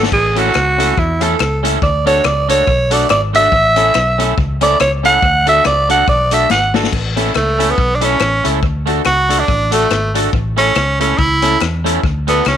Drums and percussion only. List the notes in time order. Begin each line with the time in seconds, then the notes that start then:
0.03 snare
0.12 kick, crash
0.36 closed hi-hat
0.54 cross-stick, clap
0.80 closed hi-hat
0.98 kick
1.21 closed hi-hat
1.40 cross-stick, clap
1.65 closed hi-hat
1.82 kick
2.07 closed hi-hat
2.25 cross-stick, clap
2.49 closed hi-hat
2.67 kick
2.91 closed hi-hat
3.10 cross-stick, clap
3.34 closed hi-hat
3.52 kick
3.76 closed hi-hat
3.95 cross-stick, clap
4.20 closed hi-hat
4.38 kick
4.61 closed hi-hat
4.80 cross-stick, clap
5.05 closed hi-hat
5.22 kick
5.47 closed hi-hat
5.65 cross-stick, clap
5.90 closed hi-hat
6.08 kick
6.31 closed hi-hat
6.50 snare, clap
6.74 snare
6.83 snare
6.92 kick, crash
7.17 closed hi-hat
7.35 cross-stick, clap
7.60 closed hi-hat
7.78 kick
8.01 closed hi-hat
8.20 cross-stick, clap
8.45 closed hi-hat
8.63 kick
8.87 closed hi-hat
9.05 cross-stick, clap
9.30 closed hi-hat
9.48 kick
9.72 closed hi-hat
9.91 cross-stick, clap
10.15 closed hi-hat
10.33 kick
10.57 closed hi-hat
10.76 cross-stick, clap
11.01 closed hi-hat
11.19 kick
11.42 closed hi-hat
11.61 cross-stick, clap
11.86 closed hi-hat
12.03 kick
12.28 closed hi-hat
12.46 cross-stick, clap